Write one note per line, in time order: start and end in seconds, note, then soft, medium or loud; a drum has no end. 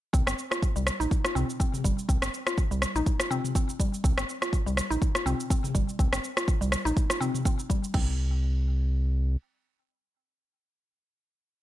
0.13 0.22 C2 medium
0.13 0.21 C4 medium
0.13 kick loud
0.13 shaker medium
0.27 0.34 G1 loud
0.27 0.33 C4 medium
0.27 cross-stick medium
0.27 shaker medium
0.39 shaker soft
0.51 0.61 F4 medium
0.51 cross-stick medium
0.51 shaker soft
0.62 kick loud
0.62 shaker soft
0.76 0.91 C2 loud
0.76 0.82 G3 medium
0.76 shaker soft
0.87 cross-stick medium
0.87 shaker medium
1.00 1.07 A#1 medium
1.00 1.06 D#4 loud
1.00 shaker soft
1.11 kick loud
1.11 shaker soft
1.24 1.34 F4 medium
1.24 cross-stick medium
1.24 shaker medium
1.35 1.44 C2 medium
1.35 1.48 C4 loud
1.35 mid tom medium
1.35 shaker soft
1.50 shaker soft
1.60 1.72 C4 medium
1.60 kick loud
1.60 shaker medium
1.74 mid tom medium
1.74 shaker soft
1.84 1.93 G1 medium
1.84 1.97 G3 medium
1.84 kick medium
1.84 shaker medium
1.99 shaker medium
2.09 2.18 C2 loud
2.09 2.16 C4 medium
2.09 kick loud
2.09 shaker medium
2.22 2.29 G1 medium
2.22 2.28 C4 medium
2.22 cross-stick loud
2.22 shaker medium
2.34 shaker medium
2.47 2.57 F4 medium
2.47 cross-stick medium
2.47 shaker medium
2.58 kick loud
2.58 shaker soft
2.71 2.86 C2 loud
2.71 2.77 G3 medium
2.71 shaker medium
2.82 cross-stick medium
2.82 shaker medium
2.95 3.02 A#1 medium
2.95 3.01 D#4 loud
2.95 shaker medium
3.06 kick loud
3.06 shaker medium
3.20 3.30 F4 medium
3.20 cross-stick medium
3.20 shaker medium
3.31 3.44 C4 loud
3.31 mid tom medium
3.31 shaker medium
3.44 mid tom medium
3.44 shaker medium
3.55 3.67 C4 medium
3.55 kick loud
3.55 shaker medium
3.69 shaker medium
3.80 3.92 G3 medium
3.80 kick medium
3.80 shaker medium
3.94 shaker medium
4.04 4.13 C2 loud
4.04 4.11 C4 medium
4.04 kick loud
4.04 shaker medium
4.17 4.24 G1 loud
4.17 4.23 C4 medium
4.17 cross-stick loud
4.17 shaker loud
4.29 shaker medium
4.42 4.52 F4 medium
4.42 cross-stick medium
4.42 shaker medium
4.53 kick loud
4.53 shaker medium
4.66 4.81 C2 loud
4.66 4.72 G3 medium
4.66 shaker medium
4.77 cross-stick medium
4.77 shaker medium
4.90 4.98 A#1 medium
4.90 4.96 D#4 loud
4.90 shaker medium
5.02 kick loud
5.02 shaker medium
5.15 5.25 F4 medium
5.15 cross-stick medium
5.15 shaker loud
5.26 5.35 C2 medium
5.26 5.39 C4 loud
5.26 mid tom medium
5.26 shaker medium
5.40 shaker medium
5.50 5.62 C4 medium
5.50 kick loud
5.50 shaker loud
5.64 mid tom medium
5.64 shaker medium
5.75 5.84 G1 medium
5.75 5.87 G3 medium
5.75 kick medium
5.75 shaker medium
5.89 shaker medium
5.99 6.08 C2 loud
5.99 6.06 C4 medium
5.99 kick loud
5.99 shaker loud
6.12 6.20 G1 loud
6.12 6.19 C4 medium
6.12 cross-stick medium
6.12 shaker loud
6.24 shaker medium
6.37 6.47 F4 medium
6.37 cross-stick medium
6.37 shaker soft
6.48 kick loud
6.48 shaker medium
6.61 6.76 C2 loud
6.61 6.67 G3 medium
6.61 shaker medium
6.72 cross-stick medium
6.72 shaker loud
6.85 6.93 A#1 medium
6.85 6.91 D#4 loud
6.85 shaker medium
6.97 kick loud
6.97 shaker medium
7.10 7.20 F4 medium
7.10 cross-stick medium
7.10 shaker loud
7.21 7.34 C4 loud
7.21 mid tom medium
7.21 shaker medium
7.34 mid tom medium
7.34 shaker medium
7.45 7.58 C4 medium
7.45 kick loud
7.45 shaker loud
7.59 shaker medium
7.70 7.82 G3 medium
7.70 kick medium
7.70 shaker medium
7.84 shaker medium
7.94 9.37 C2 loud
7.94 8.17 C4 loud
7.94 kick loud
7.94 crash medium